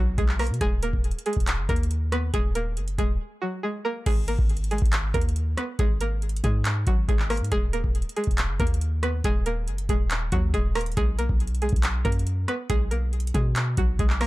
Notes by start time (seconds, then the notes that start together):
Already playing: B1 F#3 F#4
0.18 B1 G#3 G#4, kick, closed hi-hat
0.29 clap
0.39 A#3 A#4, cross-stick, closed hi-hat, open hi-hat
0.47 B2, closed hi-hat
0.54 closed hi-hat
0.61 D#1 G#3 G#4, kick, closed hi-hat
0.83 A#3 A#4, closed hi-hat
0.93 D#1, kick
1.04 closed hi-hat
1.11 closed hi-hat
1.19 closed hi-hat
1.26 G#3 G#4, closed hi-hat
1.33 D#1, kick, closed hi-hat
1.40 closed hi-hat
1.47 clap, closed hi-hat
1.58 F#1
1.69 D#2 A#3 A#4, kick, closed hi-hat
1.76 closed hi-hat
1.83 closed hi-hat
1.91 closed hi-hat
2.12 B3 B4, cross-stick, closed hi-hat
2.34 D#1 G#3 G#4, kick, closed hi-hat
2.55 A#3 A#4, closed hi-hat
2.77 F#1, closed hi-hat
2.88 closed hi-hat
2.98 D#1 G#3 G#4, kick, closed hi-hat
3.42 F#3 F#4
3.63 G#3 G#4
3.85 A#3 A#4
4.06 G#1 G#3 G#4, kick, closed hi-hat, crash
4.28 A#3 A#4, closed hi-hat
4.39 G#1, kick
4.49 closed hi-hat
4.57 closed hi-hat
4.64 closed hi-hat
4.71 G#3 G#4, closed hi-hat
4.78 G#1, kick, closed hi-hat
4.86 closed hi-hat
4.93 clap, closed hi-hat
5.14 D#2 A#3 A#4, kick, closed hi-hat
5.21 closed hi-hat
5.29 closed hi-hat
5.36 closed hi-hat
5.58 B3 B4, cross-stick, closed hi-hat
5.79 G#1 G#3 G#4, kick, closed hi-hat
6.01 A#3 A#4, closed hi-hat
6.22 closed hi-hat
6.29 closed hi-hat
6.37 closed hi-hat
6.44 G#2 G#3 G#4, kick, closed hi-hat
6.65 clap, closed hi-hat
6.87 G#1 F#3 F#4, kick, closed hi-hat
7.08 G#1 G#3 G#4, kick, closed hi-hat
7.19 clap
7.30 A#3 A#4, cross-stick, closed hi-hat, open hi-hat
7.37 G#2, closed hi-hat
7.44 closed hi-hat
7.52 D#1 G#3 G#4, kick, closed hi-hat
7.73 A#3 A#4, closed hi-hat
7.84 D#1, kick
7.95 closed hi-hat
8.02 closed hi-hat
8.09 closed hi-hat
8.16 G#3 G#4, closed hi-hat
8.24 D#1, kick, closed hi-hat
8.31 closed hi-hat
8.38 clap, closed hi-hat
8.49 F#1
8.60 D#2 A#3 A#4, kick, closed hi-hat
8.67 closed hi-hat
8.74 closed hi-hat
8.81 closed hi-hat
9.03 B3 B4, cross-stick, closed hi-hat
9.24 D#1 G#3 G#4, kick, closed hi-hat
9.46 A#3 A#4, closed hi-hat
9.68 F#1, closed hi-hat
9.78 closed hi-hat
9.89 D#1 G#3 G#4, kick, closed hi-hat
10.11 clap, closed hi-hat
10.32 D#2 F#3 F#4, kick, closed hi-hat
10.54 D#1 G#3 G#4, kick, closed hi-hat
10.75 A#3 A#4, cross-stick, closed hi-hat, open hi-hat
10.81 closed hi-hat
10.86 closed hi-hat
10.92 closed hi-hat
10.97 B1 G#3 G#4, kick, closed hi-hat
11.19 A#3 A#4, closed hi-hat
11.29 B1, kick
11.40 closed hi-hat
11.47 closed hi-hat
11.55 closed hi-hat
11.62 G#3 G#4, closed hi-hat
11.69 B1, kick, closed hi-hat
11.76 closed hi-hat
11.83 clap, closed hi-hat
12.05 F#2 A#3 A#4, kick, closed hi-hat
12.12 closed hi-hat
12.19 closed hi-hat
12.27 closed hi-hat
12.48 B3 B4, cross-stick, closed hi-hat
12.70 B1 G#3 G#4, kick, closed hi-hat
12.91 A#3 A#4, closed hi-hat
13.13 closed hi-hat
13.20 closed hi-hat
13.27 closed hi-hat
13.34 B2 G#3 G#4, kick, closed hi-hat
13.56 clap, closed hi-hat
13.77 B1 F#3 F#4, kick, closed hi-hat
13.99 B1 G#3 G#4, kick, closed hi-hat
14.10 clap
14.21 A#3 A#4, cross-stick, closed hi-hat, open hi-hat